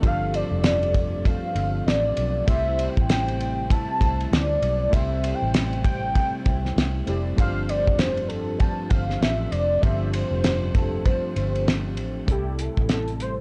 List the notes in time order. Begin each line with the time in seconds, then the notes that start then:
0.00 G1 G2 F3 A3 D4 F4 G4, kick, ride
0.04 A3 C4 A4 F5
0.34 D5, ride
0.51 F1
0.64 snare, ride
0.83 ride
0.95 kick, ride
1.25 G2 F3 A3 C4 F5, kick, ride
1.54 G1 F3 A3 C4, ride
1.86 A1 D5, snare, ride
2.17 B1, ride
2.45 C2 C3 G3 A3 C4 E4 G4 E5, kick, ride
2.50 E4 C5
2.79 ride
2.89 G5
2.97 A1, kick
3.09 G5, snare, ride
3.28 ride
3.40 ride
3.70 C3 G3 A3 E4 A5, kick, ride
4.00 C2 G3 A3 E4, kick, ride
4.20 ride
4.32 D2 D5, snare, ride
4.62 B1, ride
4.90 C2 C3 G3 A3 C4 E4 G4 E5, kick, ride
4.95 A3 E4 C5
5.24 ride
5.35 G5
5.42 A1
5.54 snare, ride
5.73 ride
5.85 G5, kick, ride
6.15 C3 G3 A3 E4, kick, ride
6.45 C2 G3 A3 E4, kick, ride
6.65 snare
6.76 C2, snare, ride
7.06 F1 A3 C4 E4 G4 D5, ride
7.36 G1 G2 F3 A3 D4 F4 G4 F5, kick, ride
7.40 C4 C5
7.69 D5, ride
7.87 F1, kick
7.98 C5, snare, ride
8.17 ride
8.28 A4, ride
8.59 G2 F3 A3 C4 A5, kick, ride
8.89 G1 F3 A3 C4 F5, kick, ride
9.10 snare
9.21 A1 E5, snare, ride
9.51 F1 D5, ride
9.81 G1 G2 F3 A3 D4 F4 G4 E5, kick, ride
9.86 C4 C5
10.12 C5, ride
10.31 F1
10.44 snare, ride
10.74 A4, kick, ride
11.04 G2 F3 A3 C4 C5, kick, ride
11.35 G1 F3 A3 C4, ride
11.55 ride
11.68 snare, ride
11.97 A1, ride
12.26 C2 C3 G3 A3 C4 E4, kick, closed hi-hat
12.30 E4 G4 A4
12.59 A4, closed hi-hat
12.77 A1, kick
12.89 A4, snare, closed hi-hat
13.08 closed hi-hat
13.20 C5, closed hi-hat